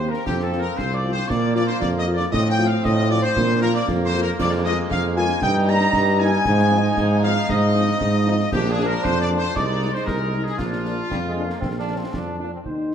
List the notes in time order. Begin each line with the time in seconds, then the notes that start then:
Already playing: D#2 A#3 C4
0.00 A#3 C4 G4
0.09 A#4
0.14 snare
0.26 F2 F3 C4 G4, concert bass drum, snare, crash
0.40 A4, snare
0.53 F3 C4 F4, snare
0.59 A#4
0.77 C2 C5, concert bass drum, snare
0.94 D5
1.04 F3 C4 F4
1.12 C5
1.17 snare
1.28 A#2 A#3 D5, concert bass drum, snare
1.54 F3 A#3 F4 D5, snare
1.67 C5, snare
1.80 F2 D5, concert bass drum, snare
1.98 D#5
2.07 F3 A#3 F4
2.15 D5
2.20 snare
2.32 A2 F3 C4 D#5, concert bass drum, snare, crash
2.47 G5, snare
2.59 F3 C4 F4, snare
2.67 F5
2.84 A2 D#5, concert bass drum, snare
3.10 F3 C4 F4 D5
3.23 C5, snare
3.36 A#2 A#3, concert bass drum, snare
3.62 F3 A#3 F4 A#4
3.74 D5
3.88 F2, concert bass drum, snare
4.05 C5
4.13 F3 A#3 F4
4.22 A#4
4.39 F2 G#3 D5, concert bass drum, snare, crash
4.52 snare
4.64 G#3 A#3 F4 D#5, snare
4.91 F2 F5, concert bass drum, snare
5.17 G#3 A#3 F4 G#5
5.29 snare
5.42 G2 G3 D#4 G5, concert bass drum, snare
5.68 G3 A#3 D#4 A#5, snare
5.80 snare
5.93 G2, concert bass drum, snare
6.20 G3 A#3 D#4 G#5
6.33 snare
6.45 G#2 F3 D#4, concert bass drum, snare, crash
6.59 snare
6.71 F3 C4 D#4, snare
6.97 G#2, concert bass drum, snare
7.23 F3 C4 D#4 F5
7.36 snare
7.49 G#2 D#5, concert bass drum, snare
7.74 F3 C4 D#4, snare
7.88 snare
8.01 G#2, concert bass drum, snare
8.26 F3 C4 D#4
8.40 snare
8.52 A#1 F3 D4 G4, concert bass drum, snare, crash
8.66 G#4, snare
8.70 G#4
8.79 F3 A#3 D4, snare
8.85 A#4
9.03 F2 C5, concert bass drum, snare
9.20 D5
9.30 F3 A#3 D4
9.37 C5
9.43 snare
9.55 C2 G#3 D#4 D5, concert bass drum, snare
9.81 G#3 D#4, snare
9.94 C5, snare
10.07 C2 A#4, concert bass drum, snare
10.33 G#3 D#4
10.44 G#4, snare
10.58 A#1 A#3 D4 F4, concert bass drum, snare, crash
10.73 snare
10.85 F3 A#3 D4, snare
11.10 F2 G3, concert bass drum, snare
11.28 G#3
11.36 F3 A#3 D4
11.45 A#3
11.50 snare
11.61 A#1 C4, concert bass drum, snare
11.79 D4
11.88 F3 A#3 D4
11.97 C4
12.13 F2 D4, concert bass drum, snare
12.40 F3 A#3 D4
12.53 C4
12.65 D#2 D#4 A#4 C5 G5, concert bass drum
12.92 G3 A#3 D#4, snare